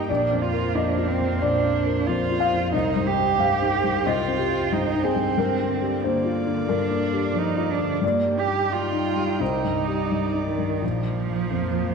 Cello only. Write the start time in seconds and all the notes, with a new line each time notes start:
0.10 D4
0.42 F4
0.75 D4
1.08 C4
1.41 D4
2.07 F4
2.73 D#4
3.07 G4
4.06 F4
4.73 D#4
5.04 C4
6.04 A#3
6.70 D4
7.37 D#4
7.70 D4
8.05 A#3
8.39 G4
8.73 F4
9.41 D#4
10.48 D#3
10.84 F3